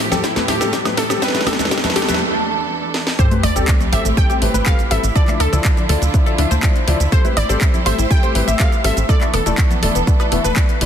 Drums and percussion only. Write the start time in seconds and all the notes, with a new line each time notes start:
0.12 snare, closed hi-hat, low conga, shaker
0.24 kick, snare, closed hi-hat, shaker
0.36 snare, closed hi-hat, high conga, shaker
0.48 snare, open hi-hat, high conga
0.61 snare, closed hi-hat, shaker
0.73 kick, snare, closed hi-hat, shaker
0.85 snare, closed hi-hat, high woodblock, shaker
0.97 snare, open hi-hat
1.10 snare, closed hi-hat, high woodblock, shaker
1.22 kick, snare, closed hi-hat, shaker
1.28 snare
1.35 snare, closed hi-hat, shaker
1.41 snare
1.46 kick, snare, open hi-hat, high bongo, high conga, high woodblock
1.53 snare
1.59 snare, closed hi-hat, high conga, shaker
1.65 snare
1.71 kick, snare, closed hi-hat, shaker
1.78 snare
1.84 snare, closed hi-hat, low conga, shaker
1.90 snare
1.95 snare, open hi-hat, high bongo
2.02 snare
2.08 snare, closed hi-hat, low conga, shaker
2.14 snare
2.94 snare
3.07 snare
3.19 kick, closed hi-hat, shaker
3.31 closed hi-hat, high conga, shaker
3.43 open hi-hat, high bongo, high woodblock
3.56 closed hi-hat, shaker
3.68 kick, clap, closed hi-hat, shaker
3.80 closed hi-hat, low conga, shaker
3.92 open hi-hat, high bongo, high conga
4.05 closed hi-hat, shaker
4.17 kick, closed hi-hat, shaker
4.30 closed hi-hat, shaker
4.42 open hi-hat
4.54 closed hi-hat, high conga, shaker
4.66 kick, clap, closed hi-hat, shaker
4.79 closed hi-hat, shaker
4.91 open hi-hat
5.03 closed hi-hat, high bongo, shaker
5.16 kick, closed hi-hat, shaker
5.28 clap, closed hi-hat, high conga, shaker
5.40 open hi-hat, high bongo, high woodblock
5.53 closed hi-hat, shaker
5.65 kick, clap, closed hi-hat, shaker
5.77 closed hi-hat, low conga, shaker
5.89 open hi-hat, high conga
6.02 closed hi-hat, shaker
6.14 kick, closed hi-hat, shaker
6.26 closed hi-hat, shaker
6.38 open hi-hat
6.51 closed hi-hat, high conga, shaker
6.63 kick, clap, closed hi-hat, shaker
6.76 closed hi-hat, shaker
6.88 open hi-hat
7.00 closed hi-hat, shaker
7.12 kick, closed hi-hat, shaker
7.25 closed hi-hat, high conga, shaker
7.37 open hi-hat, high bongo, high woodblock
7.49 closed hi-hat, shaker
7.61 kick, clap, closed hi-hat, shaker
7.74 closed hi-hat, low conga, shaker
7.86 open hi-hat, high bongo, high conga
7.99 closed hi-hat, shaker
8.11 kick, closed hi-hat, shaker
8.23 closed hi-hat, shaker
8.35 open hi-hat
8.48 closed hi-hat, high conga, shaker
8.60 kick, clap, closed hi-hat, shaker
8.72 closed hi-hat, shaker
8.84 open hi-hat
8.97 closed hi-hat, high bongo, shaker
9.09 kick, closed hi-hat, shaker
9.21 clap, closed hi-hat, high conga, shaker
9.33 open hi-hat, high bongo, high woodblock
9.46 closed hi-hat, shaker
9.58 kick, clap, closed hi-hat, shaker
9.70 closed hi-hat, low conga, shaker
9.82 open hi-hat, high conga
9.95 closed hi-hat, shaker
10.07 kick, closed hi-hat, shaker
10.20 closed hi-hat, high woodblock, shaker
10.32 open hi-hat
10.44 closed hi-hat, high conga, shaker
10.56 kick, clap, closed hi-hat, shaker
10.69 closed hi-hat, shaker
10.81 open hi-hat